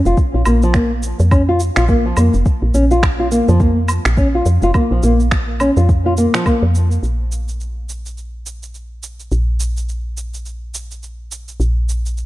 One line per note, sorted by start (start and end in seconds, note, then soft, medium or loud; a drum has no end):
0.05 0.14 F1 medium
0.05 0.17 F4 medium
0.05 shaker soft
0.17 kick medium
0.17 shaker soft
0.34 0.43 A#1 medium
0.34 0.41 F4 medium
0.45 1.14 A#1 medium
0.45 0.61 A#3 medium
0.45 low woodblock medium
0.45 shaker medium
0.62 0.74 F3 medium
0.62 shaker soft
0.74 0.91 A#3 medium
0.74 finger snap medium
0.74 kick medium
0.74 shaker soft
1.03 shaker medium
1.19 1.71 F2 medium
1.19 shaker soft
1.31 1.41 C#4 medium
1.31 kick loud
1.31 low woodblock medium
1.31 shaker soft
1.49 1.60 F4 medium
1.60 shaker medium
1.76 2.13 A#1 medium
1.76 1.84 F4 medium
1.76 finger snap medium
1.76 shaker soft
1.88 2.04 A#3 medium
1.88 kick medium
1.88 shaker soft
2.05 2.16 F3 medium
2.17 2.30 F2 medium
2.17 2.33 A#3 medium
2.17 low woodblock medium
2.17 shaker medium
2.34 2.43 F1 medium
2.34 shaker soft
2.46 kick medium
2.46 shaker soft
2.62 2.71 A#1 medium
2.74 3.42 A#1 medium
2.74 2.84 C#4 medium
2.74 shaker medium
2.91 3.02 F4 medium
2.91 shaker soft
3.03 finger snap medium
3.03 kick loud
3.03 low woodblock medium
3.03 shaker soft
3.20 3.26 F4 medium
3.31 3.47 A#3 medium
3.31 shaker medium
3.48 3.99 F2 medium
3.48 3.59 F3 medium
3.48 shaker soft
3.60 3.76 A#3 medium
3.60 kick medium
3.60 shaker soft
3.88 low woodblock medium
3.88 shaker medium
4.05 4.41 A#1 medium
4.05 finger snap medium
4.05 shaker soft
4.17 4.27 C#4 medium
4.17 kick medium
4.17 shaker soft
4.35 4.46 F4 medium
4.46 4.59 F2 medium
4.46 shaker medium
4.62 4.71 F1 medium
4.62 4.70 F4 medium
4.62 shaker soft
4.74 4.90 A#3 medium
4.74 kick loud
4.74 low woodblock medium
4.74 shaker soft
4.91 5.00 A#1 medium
4.91 5.02 F3 medium
5.03 5.71 A#1 medium
5.03 5.19 A#3 medium
5.03 shaker medium
5.20 shaker soft
5.31 finger snap medium
5.31 kick loud
5.31 shaker soft
5.60 5.70 C#4 medium
5.60 low woodblock medium
5.60 shaker medium
5.77 6.28 F2 medium
5.77 5.88 F4 medium
5.77 shaker soft
5.89 kick loud
5.89 shaker soft
6.06 6.12 F4 medium
6.17 6.33 A#3 medium
6.17 shaker medium
6.34 6.45 F3 medium
6.34 finger snap medium
6.34 shaker soft
6.46 6.62 A#3 medium
6.46 kick loud
6.46 low woodblock medium
6.46 shaker soft
6.63 6.98 F2 medium
6.75 shaker medium
6.91 shaker soft
7.03 9.29 A#1 medium
7.03 shaker soft
7.32 shaker medium
7.48 shaker soft
7.60 shaker soft
7.89 shaker medium
8.06 shaker soft
8.18 shaker soft
8.46 shaker medium
8.63 shaker soft
8.75 shaker soft
9.03 shaker medium
9.20 shaker soft
9.32 11.58 A#1 medium
9.32 shaker soft
9.60 shaker medium
9.77 shaker soft
9.89 shaker soft
10.17 shaker medium
10.34 shaker soft
10.46 shaker soft
10.74 shaker medium
10.91 shaker soft
11.03 shaker soft
11.31 shaker medium
11.48 shaker soft
11.60 12.26 A#1 medium
11.60 shaker soft
11.89 shaker medium
12.06 shaker soft
12.17 shaker soft